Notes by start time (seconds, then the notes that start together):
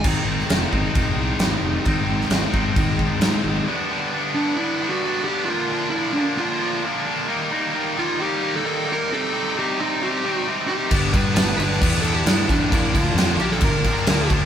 0.03 G#1 G#2 D#3 G#3 C4 D#4, kick, crash
0.27 G#1
0.39 snare
0.50 F1, snare, crash
0.72 G#1 G#2 D#3 G#3 C4 D#4, kick
0.95 F1, kick, crash
1.16 C2
1.39 G#1, snare, crash
1.62 F1
1.85 G#1 G#2 D#3 G#3 C4 D#4, kick, crash
2.09 G#1
2.21 snare
2.30 G#1, snare, crash
2.53 G#1 G#2 D#3 G#3 C4 D#4, kick
2.76 G#1, kick, crash
2.99 kick
3.20 G#2, snare, crash
3.44 G#1
3.67 G2 D3 G3 B3 D4
3.90 G2 D3 G3 B3 D4
4.12 G2 D3 G3 B3 D4
4.34 G2 D3 G3 B3 D4
4.56 G2 D3 G3 B3 E4
4.61 D4
4.80 G2 D3 G3 B3 D4
4.89 F#4
5.02 G2 D3 G3 B3 D4
5.24 G2 D3 G3 B3 G4
5.28 D4
5.44 F4
5.48 A#2 D3 F3 A#3 D4
5.71 A#2 D3 F3 A#3 D4
5.90 E4
5.94 A#2 D3 F3 A#3 D4
6.13 A#2 D4
6.17 D3 F3 A#3 D4
6.38 A#2 D3 F3 A#3 D4 F4
6.61 A#2 D3 F3 A#3 D4
6.84 A#2 D3 F3 A#3 D4
7.05 A#2 D3 F3 A#3 D4
7.27 D#3 G3 A#3 D#4
7.51 D#3 G3 A#3 D#4
7.74 D#3 G3 A#3 D#4
7.97 D#3 G3 A#3 D#4 F4
8.20 D#3 G3 A#3 D#4 G4
8.41 D#3 G3 A#3 D#4
8.57 A4
8.65 D#3 G3 A#3 D#4
8.87 D#3 G3 A#3 D#4
8.93 A#4
9.10 C3 G3 C4 D#4 A4
9.33 C3 G3 C4 D#4
9.56 C3 G3 C4 D#4 G4
9.79 C3 G3 C4 D#4
10.01 C3 G3 C4 D#4 G4
10.24 C3 G3 C4 D#4
10.33 F#4
10.47 C3 G3 C4 D#4
10.68 C3 G3 C4 D#4 G4
10.91 G1 G2 D3 G3 B3 D4, kick, crash
11.13 G2 D3 G3 B3 D4 B4, kick, crash
11.34 G1 G2 D3 G3 B3 D4 B4, snare, crash
11.57 G1 G2 D3 G3 B3 D4 B4, crash
11.73 snare
11.80 E2 G2 D3 G3 B3 D4, kick, crash
12.02 G2 D3 G3 B3 A4, crash
12.06 D4
12.13 G4
12.26 G2 D3 G3 B3 D4 E4, snare, crash
12.48 A1 G2 D3 G3 B3 D4, kick, crash
12.70 A#1 A#2 D3 F3 A#3 D4 E4, kick, crash
12.93 D2 A#2 D3 F3 A#3 D4 F4, kick, crash
13.14 F2 A#2 D3 F3, crash
13.19 A#3 D4, snare
13.36 A#1 G4, crash
13.40 A#2 D3 F3 A#3 D4
13.51 A4, snare
13.61 G1 A#2 D3 F3 A#3 A#4, kick, crash
13.65 D4
13.84 A#2 D3 F3 A#3 D4, kick, crash
13.96 snare
14.07 D2 A#2 D3 F3 A#3 D4, snare, crash
14.30 A#2 D3 F3 A#3 D4, kick, crash